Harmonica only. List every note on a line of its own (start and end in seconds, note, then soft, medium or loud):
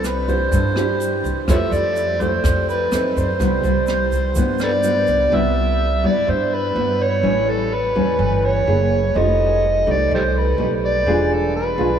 0.06 0.32 B4 medium
0.31 1.25 C5 medium
1.50 1.57 B4 medium
1.50 1.58 C#5 medium
1.50 1.75 E5 medium
1.73 2.23 D5 medium
2.21 2.69 C5 medium
2.69 3.20 B4 medium
3.19 4.61 C5 medium
4.63 4.71 A4 medium
4.63 4.72 B4 medium
4.63 5.37 D5 loud
5.35 6.08 E5 loud
6.06 6.31 D5 medium
6.30 6.55 C5 medium
6.54 7.04 B4 medium
7.03 7.51 C#5 medium
7.50 7.76 A4 medium
7.75 8.47 B4 medium
8.45 9.19 C#5 loud
9.17 9.92 D#5 medium
9.91 10.13 D5 medium
10.15 10.23 G4 medium
10.15 10.23 A4 medium
10.15 10.39 C5 medium
10.38 10.71 B4 medium
10.85 11.35 D5 medium
11.34 11.56 A4 medium
11.56 11.99 B4 medium